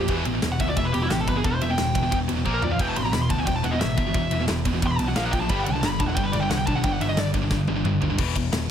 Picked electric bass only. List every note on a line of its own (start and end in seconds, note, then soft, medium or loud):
0.09 0.23 E1 loud
0.26 0.40 A1 medium
0.43 0.57 E1 loud
0.60 0.74 D2 medium
0.77 0.91 E1 loud
0.95 1.08 E1 medium
1.11 1.25 A1 loud
1.27 1.42 G1 medium
1.45 1.59 E1 loud
1.62 1.76 E1 medium
1.79 1.93 E1 medium
1.95 2.10 E1 medium
2.12 2.26 E2 medium
2.30 2.44 E1 medium
2.45 2.60 A#1 medium
2.64 2.78 F2 medium
2.80 2.94 E1 loud
2.97 3.11 A1 medium
3.13 3.28 E1 loud
3.30 3.45 D2 medium
3.47 3.61 E1 medium
3.64 3.79 E1 medium
3.82 3.96 A1 loud
3.98 4.12 G1 medium
4.15 4.29 E1 medium
4.32 4.46 E1 medium
4.49 4.63 E1 medium
4.65 4.80 E1 medium
4.82 4.97 E2 medium
4.99 5.14 B1 medium
5.16 5.30 A#1 loud
5.33 5.47 A#1 medium
5.50 5.64 G1 loud
5.67 5.81 C2 medium
5.84 5.98 G1 medium
6.00 6.14 E1 loud
6.17 6.31 G1 loud
6.35 6.49 G1 loud
6.51 6.65 C2 medium
6.67 6.82 B1 medium
6.84 6.99 G1 loud
7.01 7.15 G1 loud
7.18 7.32 G1 loud
7.34 7.49 G1 medium
7.51 7.66 G2 loud
7.68 7.82 G1 loud
7.85 8.00 G1 loud
8.01 8.16 G1 medium
8.19 8.35 E1 medium
8.35 8.51 E1 medium
8.52 8.68 E1 medium